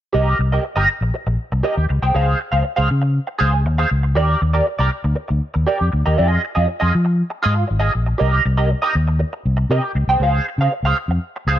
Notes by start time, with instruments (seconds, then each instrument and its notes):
0.13 fingered electric bass C2, clean electric guitar G4 A#4 D#5
0.39 fingered electric bass C2, muted clean electric guitar stroke
0.52 clean electric guitar G4 A#4 D#5
0.65 muted clean electric guitar stroke
0.76 fingered electric bass G1, clean electric guitar G4 A#4 D#5
0.89 muted clean electric guitar stroke
1.01 fingered electric bass A#1, muted clean electric guitar stroke
1.14 muted clean electric guitar stroke
1.27 fingered electric bass A#1, muted clean electric guitar stroke
1.52 fingered electric bass C2, muted clean electric guitar stroke
1.63 clean electric guitar G4 A#4 D#5
1.76 fingered electric bass D#2, muted clean electric guitar stroke
1.89 fingered electric bass C#2, muted clean electric guitar stroke
2.02 fingered electric bass C2, clean electric guitar G#4 C5 G5
2.14 fingered electric bass C#2, clean electric guitar G#4 C5 F5
2.40 muted clean electric guitar stroke
2.52 fingered electric bass C#2, clean electric guitar G#4 C5 F5
2.64 muted clean electric guitar stroke
2.76 fingered electric bass C#2, clean electric guitar G#4 C5 F5
2.89 fingered electric bass C#3, muted clean electric guitar stroke
3.02 muted clean electric guitar stroke
3.27 muted clean electric guitar stroke
3.39 fingered electric bass C#2, clean electric guitar G#4 C5 F5
3.53 muted clean electric guitar stroke
3.66 fingered electric bass D#2, muted clean electric guitar stroke
3.78 clean electric guitar G#4 C5 F5
3.90 fingered electric bass C#2, muted clean electric guitar stroke
4.03 muted clean electric guitar stroke
4.15 fingered electric bass D#2, clean electric guitar G4 A#4 D5
4.41 fingered electric bass D#2, muted clean electric guitar stroke
4.53 clean electric guitar G4 A#4 D5
4.67 muted clean electric guitar stroke
4.79 fingered electric bass C2, clean electric guitar G4 A#4 D5
4.91 muted clean electric guitar stroke
5.04 fingered electric bass D2, muted clean electric guitar stroke
5.15 muted clean electric guitar stroke
5.28 fingered electric bass D2, muted clean electric guitar stroke
5.54 fingered electric bass D#2, muted clean electric guitar stroke
5.67 clean electric guitar G4 A#4 D5
5.79 fingered electric bass F2, muted clean electric guitar stroke
5.92 fingered electric bass D2, muted clean electric guitar stroke
6.06 fingered electric bass D#2, clean electric guitar G4 A#4 D#5
6.18 fingered electric bass F2, clean electric guitar F4 G#4 D#5
6.44 muted clean electric guitar stroke
6.55 fingered electric bass F2, clean electric guitar F4 G#4 D#5
6.67 muted clean electric guitar stroke
6.80 fingered electric bass F2, clean electric guitar F4 G#4 D#5
6.94 fingered electric bass F3, muted clean electric guitar stroke
7.05 muted clean electric guitar stroke
7.30 muted clean electric guitar stroke
7.43 fingered electric bass G#2, clean electric guitar F4 G#4 D#5
7.55 muted clean electric guitar stroke
7.67 fingered electric bass G#1, muted clean electric guitar stroke
7.80 clean electric guitar F4 G#4 D#5
7.93 fingered electric bass A#1, muted clean electric guitar stroke
8.06 muted clean electric guitar stroke
8.18 fingered electric bass C2, clean electric guitar G4 A#4 D#5
8.46 fingered electric bass C2, muted clean electric guitar stroke
8.57 clean electric guitar G4 A#4 D#5
8.70 muted clean electric guitar stroke
8.82 clean electric guitar G4 A#4 D#5
8.95 fingered electric bass D#2, muted clean electric guitar stroke
9.08 muted clean electric guitar stroke
9.19 muted clean electric guitar stroke
9.33 muted clean electric guitar stroke
9.46 fingered electric bass C2
9.57 muted clean electric guitar stroke
9.70 fingered electric bass C3, clean electric guitar G4 A#4 D#5
9.83 muted clean electric guitar stroke
9.95 fingered electric bass C#2, muted clean electric guitar stroke
10.08 fingered electric bass C2, clean electric guitar G#4 C5 G5
10.20 fingered electric bass C#2, clean electric guitar G#4 C5 F5
10.48 muted clean electric guitar stroke
10.58 fingered electric bass C#3, clean electric guitar G#4 C5 F5
10.73 muted clean electric guitar stroke
10.83 fingered electric bass C#2, clean electric guitar G#4 C5 F5
10.98 muted clean electric guitar stroke
11.08 fingered electric bass F2, muted clean electric guitar stroke
11.36 muted clean electric guitar stroke
11.47 fingered electric bass C#2, clean electric guitar G#4 C5 F5